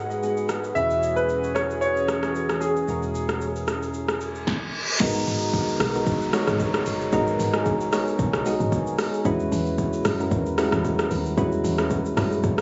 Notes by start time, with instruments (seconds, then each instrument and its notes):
Already playing: fingered electric bass G#1, synth keys G#3 B3 D#4 F#4 A#4 B4, analog synth pad G#3 F#4 G#4 B4
0.11 shaker
0.22 synth keys G#3 B3 D#4 F#4 G#4, shaker
0.37 shaker
0.49 cross-stick, shaker
0.64 shaker
0.75 fingered electric bass E1, analog synth pad E3 C#4 F#4 G#4, synth keys G#3 C#4 E4 F#4 B4, grand piano E5, shaker
0.91 shaker
1.03 shaker
1.16 grand piano B4, shaker
1.29 shaker
1.44 shaker
1.55 grand piano C#5, cross-stick, shaker
1.70 shaker
1.81 grand piano C#5, shaker
1.97 shaker
2.08 cross-stick, shaker
2.23 cross-stick, shaker
2.35 shaker
2.49 cross-stick, shaker
2.61 grand piano G#4, shaker
2.76 shaker
2.87 fingered electric bass E1, synth keys G#3 C#4 E4 F#4 A#4, shaker
3.03 shaker
3.15 shaker
3.29 cross-stick, shaker
3.41 shaker
3.56 shaker
3.68 cross-stick, shaker
3.83 shaker
3.94 reverse cymbal, shaker
4.08 cross-stick, shaker
4.21 shaker
4.35 shaker
4.47 kick, snare
5.00 log drum bass G#1, synth keys G#3 B3 D#4 F#4 A#4, kick, crash, downlifter, shaker
5.15 shaker
5.27 log drum bass G#1, open hi-hat, shaker
5.41 shaker
5.53 kick, shaker
5.68 shaker
5.80 log drum bass B1, cross-stick, open hi-hat, shaker
5.94 synth keys G#3 B3 D#4 F#4 A#4, shaker
6.06 log drum bass G#1, kick, shaker
6.21 shaker
6.33 synth keys G#3 B3 D#4 F#4 C#5, cross-stick, open hi-hat, shaker
6.47 log drum bass G#1, cross-stick, shaker
6.60 kick, shaker
6.74 cross-stick, shaker
6.86 log drum bass F#1, open hi-hat, shaker
7.01 shaker
7.12 log drum bass G#1, synth keys G#3 B3 D#4 F#4 A#4, kick, shaker
7.27 shaker
7.39 log drum bass G#1, open hi-hat, shaker
7.53 synth keys G#3 B3 D#4 F#4 G#4, cross-stick, shaker
7.66 kick, shaker
7.81 shaker
7.92 log drum bass B1, synth keys G#3 B3 D#4 F#4 C#5, cross-stick, open hi-hat, shaker
8.08 shaker
8.19 log drum bass B1, kick, shaker
8.33 cross-stick, shaker
8.45 synth keys G#3 B3 D#4 F#4 G#4, open hi-hat, shaker
8.60 log drum bass G#1, shaker
8.72 kick, shaker
8.87 shaker
8.98 cross-stick, open hi-hat, shaker
9.14 shaker
9.25 log drum bass E2, synth keys G#3 C#4 E4 F#4 B4, kick, shaker
9.40 shaker
9.52 log drum bass E2, open hi-hat, shaker
9.66 shaker
9.78 kick, shaker
9.93 shaker
10.05 log drum bass F#2, cross-stick, open hi-hat, shaker
10.19 synth keys G#3 C#4 E4 F#4 A#4, shaker
10.31 log drum bass E2, kick, shaker
10.46 shaker
10.58 synth keys G3 C#4 E4 F#4 B4, cross-stick, open hi-hat, shaker
10.64 synth keys G#3
10.72 log drum bass E2, cross-stick, shaker
10.84 kick, shaker
10.99 cross-stick, shaker
11.11 log drum bass D#2, open hi-hat, shaker
11.26 shaker
11.37 log drum bass E2, synth keys G#3 C#4 E4 F#4 B4, kick, shaker
11.52 shaker
11.64 log drum bass E2, open hi-hat, shaker
11.78 synth keys G#3 C#4 E4 F#4 B4, cross-stick, shaker
11.90 kick, shaker
12.05 shaker
12.17 log drum bass F#2, synth keys G3 C#4 E4 F#4 B4, kick, cross-stick, open hi-hat, shaker
12.23 synth keys G#3
12.32 shaker
12.44 log drum bass F#2, kick, shaker
12.58 cross-stick